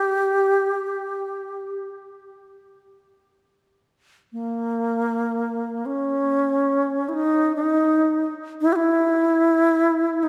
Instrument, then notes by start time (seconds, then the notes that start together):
alto flute
Already playing: G4
4.33 A#3
5.86 C#4
7.09 E4
7.14 D#4
7.56 D#4
8.61 E4
8.73 E4 G4
10.23 D#4